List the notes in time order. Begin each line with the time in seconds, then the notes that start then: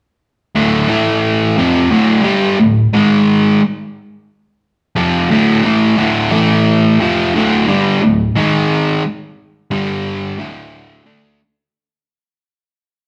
0.55 D2 A2 D3
0.89 A2 E3 A3
1.57 F2 C3 F3
1.91 D2 A2 D3
2.22 G2 D3 G3
2.58 D2 A2
2.93 G#2 D#3 G#3
4.95 F2 C3 F3
5.30 D2 A2 D3
5.64 A2 E3 A3
5.97 D2 A2 D3
6.31 A2 E3 A3
7.00 F2 C3 F3
7.35 D2 A2 D3
7.67 G2 D3 G3
8.02 D2 A2
8.36 G#2 D#3 G#3
9.71 G2 D3 G3
10.39 D2 A2 D3
11.06 D3 A3 D4